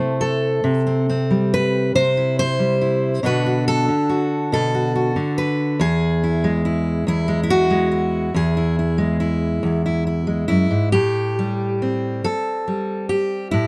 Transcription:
Already playing: steel-string acoustic guitar C3 A3 E4 A4 C5
0.21 steel-string acoustic guitar A4
0.64 steel-string acoustic guitar C3
0.87 steel-string acoustic guitar C4
1.09 steel-string acoustic guitar C4
1.30 steel-string acoustic guitar G3
1.54 steel-string acoustic guitar B4
1.95 steel-string acoustic guitar C3 C5
2.17 steel-string acoustic guitar E4
2.39 steel-string acoustic guitar C5
2.59 steel-string acoustic guitar G3
2.81 steel-string acoustic guitar E4
3.23 steel-string acoustic guitar B2 D3 D4 F#4 B4
3.46 steel-string acoustic guitar F#4
3.68 steel-string acoustic guitar A4
3.88 steel-string acoustic guitar D3
4.09 steel-string acoustic guitar F#4
4.52 steel-string acoustic guitar B2 A4
4.75 steel-string acoustic guitar F#4
4.95 steel-string acoustic guitar F#4
5.16 steel-string acoustic guitar D3
5.38 steel-string acoustic guitar B4
5.80 steel-string acoustic guitar E2 G#4
6.23 steel-string acoustic guitar E4
6.44 steel-string acoustic guitar G#3
6.65 steel-string acoustic guitar E4
7.07 steel-string acoustic guitar E2 E4
7.28 steel-string acoustic guitar G#3
7.43 steel-string acoustic guitar E4
7.50 steel-string acoustic guitar F#4
7.70 steel-string acoustic guitar G#3
7.91 steel-string acoustic guitar E4
8.34 steel-string acoustic guitar E2 G#4
8.57 steel-string acoustic guitar E4
8.79 steel-string acoustic guitar E4
8.98 steel-string acoustic guitar G#3
9.20 steel-string acoustic guitar E4
9.63 steel-string acoustic guitar E2
9.86 steel-string acoustic guitar E4
10.07 steel-string acoustic guitar E4
10.27 steel-string acoustic guitar G#3
10.48 steel-string acoustic guitar F#2 E4
10.71 steel-string acoustic guitar G#2
10.92 steel-string acoustic guitar A2 G4
11.39 steel-string acoustic guitar G3
11.82 steel-string acoustic guitar C4
12.24 steel-string acoustic guitar A4, muted steel-string acoustic guitar stroke
12.68 steel-string acoustic guitar G3
13.09 steel-string acoustic guitar G4
13.51 steel-string acoustic guitar A2 E4

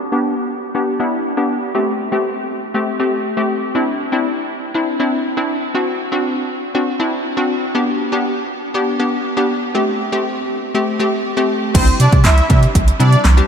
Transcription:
0.12 synth pluck B3 D4 G4
0.75 synth pluck B3 D4 G4
1.00 synth pluck B3 D4 E4
1.37 synth pluck B3 D4 G4
1.75 synth pluck A3 C4 G4
2.12 synth pluck A3 C4 G4
2.74 synth pluck A3 C4 G4
3.00 synth pluck A3 C4 G4
3.37 synth pluck A3 C4 G4
3.75 synth pluck C4 D4 E4
4.12 synth pluck C4 D4 E4
4.74 synth pluck C4 D4 E4
5.00 synth pluck C4 D4 E4
5.37 synth pluck C4 D4 E4
5.75 synth pluck C4 D4 F#4
6.12 synth pluck C4 D4 F#4
6.75 synth pluck C4 D4 F#4
7.00 synth pluck C4 D4 E4
7.37 synth pluck C4 D4 F#4
7.75 synth pluck B3 D4 G4
8.12 synth pluck B3 D4 G4
8.74 synth pluck B3 D4 G4
9.00 synth pluck B3 D4 G4
9.37 synth pluck B3 D4 G4
9.75 synth pluck A3 C4 G4
10.12 synth pluck A3 C4 G4
10.74 synth pluck A3 C4 G4
10.99 synth pluck A3 C4 G4
11.37 synth pluck A3 C4 G4
11.74 sub bass C2, synth pluck G3 C4 D4 E4, supersaw synth C4 C5, kick, closed hi-hat, crash
11.87 closed hi-hat
12.00 sub bass C3, supersaw synth D4 D5, closed hi-hat
12.12 sub bass C3, kick, closed hi-hat
12.24 sub bass C2, supersaw synth E4 E5, snare, clap, closed hi-hat
12.38 closed hi-hat
12.49 sub bass C3, synth pluck G3 C4 D4 G4, supersaw synth E4 E5, kick, closed hi-hat
12.63 closed hi-hat
12.75 sub bass C2, kick, closed hi-hat
12.88 closed hi-hat
13.00 sub bass C3, synth pluck G3 C4 D4 E4, supersaw synth D4 D5, closed hi-hat
13.13 closed hi-hat
13.25 sub bass C2, snare, clap, closed hi-hat
13.37 synth pluck G3 C4 D4 G4, closed hi-hat

